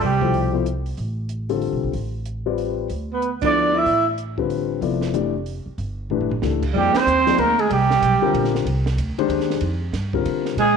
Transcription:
0.01 0.94 C2 medium
0.01 0.50 G3 medium
0.01 0.52 G4 medium
0.01 open hi-hat soft
0.21 0.52 B2 soft
0.21 0.51 F3 medium
0.21 0.52 E4 soft
0.21 0.52 A4 soft
0.21 0.52 C5 medium
0.21 kick soft
0.34 open hi-hat soft
0.53 0.64 F3 medium
0.53 0.64 B3 soft
0.53 0.64 E4 soft
0.53 0.65 A4 soft
0.53 0.65 C5 medium
0.66 closed hi-hat soft
0.86 open hi-hat soft
0.97 1.69 A1 medium
0.97 open hi-hat soft
1.29 closed hi-hat soft
1.49 1.91 D3 medium
1.49 1.91 G3 medium
1.49 1.92 C4 medium
1.49 1.91 F4 medium
1.49 1.91 A4 medium
1.49 open hi-hat soft
1.62 open hi-hat soft
1.73 1.82 B1 medium
1.83 1.93 A#1 medium
1.93 2.86 A1 medium
1.93 open hi-hat soft
2.25 closed hi-hat soft
2.46 2.88 G3 medium
2.46 2.88 C4 soft
2.46 2.88 F4 soft
2.46 2.88 B4 soft
2.46 2.88 D5 medium
2.58 open hi-hat soft
2.90 3.82 D2 medium
2.90 open hi-hat soft
3.13 3.32 B3 medium
3.13 3.32 B4 medium
3.22 closed hi-hat soft
3.42 3.84 F3 medium
3.42 3.84 B3 soft
3.42 3.76 D4 medium
3.42 3.84 E4 soft
3.42 3.85 A4 soft
3.42 3.85 D5 medium
3.42 3.80 D5 medium
3.42 kick medium
3.42 ride medium
3.74 4.06 E4 medium
3.74 4.08 E5 medium
3.85 4.78 A1 medium
3.85 open hi-hat soft
4.18 closed hi-hat soft
4.38 4.79 D3 medium
4.38 4.80 G3 medium
4.38 4.80 C4 soft
4.38 4.80 F4 medium
4.38 4.80 B4 medium
4.38 kick soft
4.50 open hi-hat soft
4.81 5.62 F1 medium
4.81 5.13 F3 medium
4.81 5.13 B3 soft
4.81 5.13 E4 soft
4.81 5.13 A4 soft
4.81 5.13 D5 medium
4.81 open hi-hat soft
5.01 snare soft
5.13 5.32 E3 medium
5.13 5.32 A3 soft
5.13 5.32 D4 soft
5.13 5.32 G4 soft
5.13 5.33 D5 medium
5.13 closed hi-hat soft
5.46 open hi-hat soft
5.66 muted upright bass stroke soft
5.78 6.38 G1 medium
5.78 open hi-hat soft
6.10 6.29 E3 medium
6.10 6.29 A3 medium
6.10 6.29 D4 medium
6.10 6.29 G4 soft
6.10 6.29 B4 medium
6.10 floor tom soft
6.21 floor tom soft
6.31 floor tom medium
6.42 6.72 C#2 medium
6.42 6.61 E3 medium
6.42 6.61 A3 soft
6.42 6.61 D4 soft
6.42 6.61 G4 soft
6.42 6.61 A4 soft
6.42 snare soft
6.63 kick medium
6.63 crash medium
6.73 6.93 F2 medium
6.73 6.93 F3 medium
6.73 6.95 G3 medium
6.73 6.93 A#3 soft
6.73 6.93 D#4 soft
6.73 6.93 G#4 soft
6.73 6.93 D5 medium
6.77 6.99 G4 medium
6.94 7.39 C4 medium
6.94 7.41 C5 loud
6.94 muted upright bass stroke soft
6.94 snare medium
6.94 ride medium
7.06 7.37 D#2 medium
7.06 hi-hat pedal medium
7.26 7.37 F3 medium
7.26 7.37 A#3 medium
7.26 7.37 D#4 medium
7.26 7.37 G#4 medium
7.26 7.38 D5 medium
7.26 snare soft
7.26 ride soft
7.38 7.69 D2 medium
7.38 7.61 A#3 medium
7.38 7.62 A#4 medium
7.38 ride medium
7.59 7.68 G#3 medium
7.59 7.71 G#4 medium
7.59 ride soft
7.69 8.01 C2 medium
7.69 8.49 G3 medium
7.69 8.51 G4 medium
7.69 ride medium
7.90 snare medium
8.02 8.21 B1 medium
8.02 hi-hat pedal medium
8.02 ride medium
8.22 8.63 D3 medium
8.22 8.63 G3 medium
8.22 8.64 C4 medium
8.22 8.64 F4 medium
8.22 8.64 A#4 medium
8.22 muted upright bass stroke soft
8.34 8.65 A#1 medium
8.34 ride medium
8.44 snare soft
8.55 snare soft
8.65 8.96 C2 medium
8.65 ride medium
8.86 snare medium
8.97 9.16 D2 medium
8.97 hi-hat pedal soft
8.97 ride medium
9.17 9.59 D#3 medium
9.17 9.60 G#3 medium
9.17 9.60 D4 medium
9.17 9.59 G4 medium
9.17 9.60 C5 medium
9.17 muted upright bass stroke soft
9.17 ride soft
9.28 9.60 D#2 medium
9.28 ride medium
9.40 snare soft
9.50 snare soft
9.61 9.92 F2 medium
9.61 ride medium
9.93 10.24 G2 medium
9.93 snare soft
9.93 hi-hat pedal soft
9.93 ride medium
10.13 10.55 D3 medium
10.13 10.55 G3 medium
10.13 10.55 C4 medium
10.13 10.55 F4 medium
10.13 10.55 A#4 medium
10.13 kick medium
10.25 10.56 D3 medium
10.25 ride medium
10.45 snare soft
10.56 10.77 A#2 medium
10.56 10.77 G#3 medium
10.56 10.77 G#4 medium
10.56 ride medium

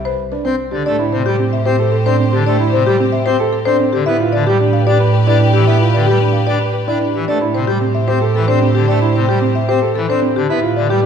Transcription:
0.00 0.70 C2 medium
0.05 0.22 B4 medium
0.05 0.22 C5 medium
0.32 0.49 D4 medium
0.32 0.49 B4 medium
0.45 0.55 C4 medium
0.45 0.62 C4 medium
0.45 0.62 C5 medium
0.71 0.82 D3 medium
0.71 0.84 D4 medium
0.71 0.89 G4 medium
0.85 3.92 A2 medium
0.85 0.96 A3 medium
0.85 1.03 D4 medium
0.85 3.89 G4 medium
0.85 3.89 C5 medium
0.85 1.03 D5 medium
0.99 1.16 E4 medium
1.12 1.22 C3 medium
1.12 1.30 C5 medium
1.26 1.36 G3 medium
1.26 1.43 G4 medium
1.39 1.56 C4 medium
1.53 1.70 E5 medium
1.66 1.76 C4 medium
1.66 1.83 G4 medium
1.66 1.83 C5 medium
1.79 1.96 A4 medium
1.92 2.10 A4 medium
2.06 2.16 C4 medium
2.06 2.23 D4 medium
2.06 2.23 C5 medium
2.20 2.37 C4 medium
2.33 2.43 D3 medium
2.33 2.50 G4 medium
2.46 2.56 A3 medium
2.46 2.63 D4 medium
2.46 2.63 D5 medium
2.60 2.77 E4 medium
2.73 2.83 C3 medium
2.73 2.90 C5 medium
2.87 2.97 G3 medium
2.87 3.04 G4 medium
3.00 3.17 C4 medium
3.12 3.30 E5 medium
3.26 3.36 C4 loud
3.26 3.44 G4 medium
3.26 3.43 C5 loud
3.40 3.57 A4 medium
3.53 3.70 A4 medium
3.66 3.76 C4 medium
3.66 3.84 D4 medium
3.66 3.83 C5 loud
3.80 3.97 C4 medium
3.93 4.03 D3 medium
3.93 4.10 G4 medium
4.06 7.13 A2 medium
4.06 4.17 B3 medium
4.06 4.24 E4 medium
4.06 7.10 G4 medium
4.06 7.10 B4 medium
4.06 4.24 E5 medium
4.20 4.37 F4 medium
4.33 4.44 D3 medium
4.33 4.50 D5 medium
4.47 4.57 G3 loud
4.47 4.64 G4 medium
4.60 4.78 D4 medium
4.73 4.91 F5 medium
4.87 4.97 D4 loud
4.87 5.04 G4 medium
4.87 5.04 D5 medium
5.00 5.18 B4 medium
5.14 5.31 B4 medium
5.27 5.38 D4 medium
5.27 5.44 E4 medium
5.27 5.44 D5 medium
5.40 5.58 D4 medium
5.54 5.64 E3 medium
5.54 5.71 G4 medium
5.67 5.78 B3 medium
5.67 5.85 E4 medium
5.67 5.85 E5 medium
5.81 5.98 F4 medium
5.94 6.05 D3 medium
5.94 6.11 D5 medium
6.06 6.18 G3 medium
6.06 6.24 G4 medium
6.06 6.25 G4 medium
6.21 6.38 D4 medium
6.33 6.51 F5 medium
6.47 6.58 D4 medium
6.47 6.65 G4 medium
6.47 6.65 D5 medium
6.61 6.79 B4 medium
6.73 6.91 B4 medium
6.88 6.98 D4 medium
6.88 7.05 E4 medium
6.88 7.05 D5 medium
7.01 7.19 D4 medium
7.14 7.25 E3 medium
7.14 7.32 G4 medium
7.28 10.35 A2 medium
7.28 7.38 A3 medium
7.28 7.45 D4 medium
7.28 10.32 G4 medium
7.28 10.32 C5 medium
7.28 7.45 D5 medium
7.41 7.59 E4 medium
7.54 7.65 C3 medium
7.54 7.72 C5 medium
7.67 7.78 G3 medium
7.67 7.85 G4 medium
7.67 7.86 G4 medium
7.81 7.99 C4 medium
7.95 8.12 E5 medium
8.08 8.18 C4 medium
8.08 8.26 G4 medium
8.08 8.26 C5 medium
8.21 8.39 A4 medium
8.35 8.45 E3 medium
8.35 8.53 A4 medium
8.48 8.59 C4 medium
8.48 8.66 D4 medium
8.48 8.66 C5 medium
8.61 8.79 C4 medium
8.75 8.85 D3 medium
8.75 8.92 G4 medium
8.88 8.99 A3 medium
8.88 9.06 D4 medium
8.88 9.06 D5 medium
9.02 9.19 E4 medium
9.15 9.25 C3 medium
9.15 9.33 C5 medium
9.28 9.39 G3 medium
9.28 9.46 G4 medium
9.41 9.59 C4 medium
9.55 9.73 E5 medium
9.68 9.79 C4 medium
9.68 9.86 G4 medium
9.68 9.86 C5 medium
9.82 10.00 A4 medium
9.96 10.06 E3 medium
9.96 10.13 A4 medium
10.09 10.20 C4 medium
10.09 10.26 D4 medium
10.09 10.27 C5 medium
10.22 10.40 C4 medium
10.36 10.46 D3 medium
10.36 10.54 G4 medium
10.49 11.06 A2 medium
10.49 10.60 B3 medium
10.49 10.67 E4 medium
10.49 11.06 G4 medium
10.49 11.06 B4 medium
10.49 10.67 E5 medium
10.62 10.80 F4 medium
10.77 10.87 D3 medium
10.77 10.94 D5 medium
10.89 11.00 G3 medium
10.89 11.06 G4 medium
11.03 11.06 D4 medium

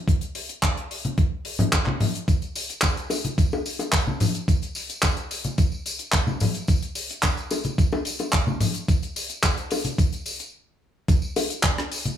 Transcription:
0.08 kick loud
0.08 closed hi-hat medium
0.21 closed hi-hat soft
0.35 open hi-hat loud
0.49 closed hi-hat medium
0.63 kick loud
0.63 clap loud
0.63 closed hi-hat medium
0.77 closed hi-hat soft
0.91 open hi-hat loud
1.05 closed hi-hat medium
1.05 high conga medium
1.18 kick loud
1.18 closed hi-hat medium
1.45 open hi-hat loud
1.59 closed hi-hat medium
1.59 low conga medium
1.73 kick loud
1.73 clap loud
1.73 closed hi-hat medium
1.86 clap soft
1.86 high conga medium
2.00 open hi-hat loud
2.00 low conga medium
2.15 closed hi-hat medium
2.28 kick loud
2.28 closed hi-hat medium
2.28 tambourine soft
2.42 closed hi-hat soft
2.42 tambourine soft
2.55 open hi-hat loud
2.55 tambourine medium
2.70 closed hi-hat medium
2.70 tambourine soft
2.81 kick loud
2.81 clap loud
2.81 closed hi-hat medium
2.81 tambourine soft
2.97 closed hi-hat medium
2.97 tambourine soft
3.10 open hi-hat loud
3.10 tambourine medium
3.10 high bongo medium
3.24 closed hi-hat medium
3.24 tambourine soft
3.24 high conga medium
3.38 kick loud
3.38 closed hi-hat medium
3.38 tambourine soft
3.52 tambourine soft
3.52 high bongo medium
3.66 open hi-hat loud
3.66 tambourine medium
3.79 closed hi-hat medium
3.79 tambourine soft
3.79 high bongo soft
3.92 kick loud
3.92 clap loud
3.92 closed hi-hat medium
3.92 tambourine medium
4.07 tambourine soft
4.07 high conga medium
4.20 open hi-hat loud
4.20 tambourine medium
4.20 low conga medium
4.35 closed hi-hat medium
4.35 tambourine soft
4.48 kick loud
4.48 closed hi-hat medium
4.48 tambourine soft
4.62 closed hi-hat medium
4.62 tambourine soft
4.75 open hi-hat loud
4.75 tambourine medium
4.89 closed hi-hat medium
4.89 tambourine soft
5.02 kick loud
5.02 clap loud
5.02 closed hi-hat medium
5.02 tambourine medium
5.17 closed hi-hat medium
5.17 tambourine soft
5.31 open hi-hat loud
5.31 tambourine medium
5.44 closed hi-hat medium
5.44 tambourine soft
5.44 high conga medium
5.58 kick loud
5.58 closed hi-hat medium
5.58 tambourine medium
5.72 tambourine soft
5.86 open hi-hat loud
5.86 tambourine loud
5.99 closed hi-hat medium
5.99 tambourine soft
6.12 kick loud
6.12 clap loud
6.12 closed hi-hat medium
6.12 tambourine medium
6.27 tambourine soft
6.27 high conga medium
6.40 open hi-hat loud
6.40 tambourine medium
6.40 low conga medium
6.54 closed hi-hat medium
6.54 tambourine soft
6.68 kick loud
6.68 closed hi-hat medium
6.68 tambourine medium
6.82 closed hi-hat medium
6.82 tambourine soft
6.95 open hi-hat loud
6.95 tambourine medium
7.09 closed hi-hat medium
7.09 tambourine soft
7.23 kick loud
7.23 clap loud
7.23 closed hi-hat medium
7.23 tambourine medium
7.37 closed hi-hat soft
7.37 tambourine soft
7.50 open hi-hat loud
7.50 tambourine loud
7.50 high bongo medium
7.64 closed hi-hat medium
7.64 tambourine soft
7.64 high conga medium
7.78 kick loud
7.78 closed hi-hat medium
7.78 tambourine medium
7.92 tambourine soft
7.92 high bongo medium
8.05 open hi-hat loud
8.05 tambourine loud
8.19 closed hi-hat medium
8.19 tambourine soft
8.19 high bongo soft
8.33 kick loud
8.33 clap loud
8.33 closed hi-hat medium
8.33 tambourine soft
8.47 tambourine soft
8.47 high conga medium
8.60 open hi-hat loud
8.60 tambourine loud
8.60 low conga medium
8.74 closed hi-hat medium
8.74 tambourine soft
8.88 kick loud
8.88 closed hi-hat medium
8.88 tambourine medium
9.02 closed hi-hat medium
9.02 tambourine soft
9.16 open hi-hat loud
9.16 tambourine loud
9.29 closed hi-hat medium
9.29 tambourine soft
9.43 kick loud
9.43 clap loud
9.43 closed hi-hat medium
9.43 tambourine medium
9.57 closed hi-hat medium
9.57 tambourine soft
9.71 open hi-hat loud
9.71 tambourine medium
9.71 high bongo medium
9.84 closed hi-hat medium
9.84 tambourine soft
9.84 high conga medium
9.98 kick loud
9.98 closed hi-hat medium
9.98 tambourine medium
10.13 closed hi-hat medium
10.13 tambourine soft
10.26 open hi-hat loud
10.26 tambourine medium
10.40 closed hi-hat medium
10.40 tambourine soft
11.08 kick loud
11.08 closed hi-hat medium
11.08 tambourine medium
11.22 tambourine soft
11.36 open hi-hat loud
11.36 tambourine medium
11.36 high bongo soft
11.50 closed hi-hat medium
11.50 tambourine soft
11.63 kick loud
11.63 clap loud
11.63 closed hi-hat medium
11.63 tambourine medium
11.78 cross-stick medium
11.78 closed hi-hat medium
11.92 open hi-hat loud
11.92 tambourine medium
12.05 closed hi-hat medium
12.05 tambourine soft
12.05 high conga medium

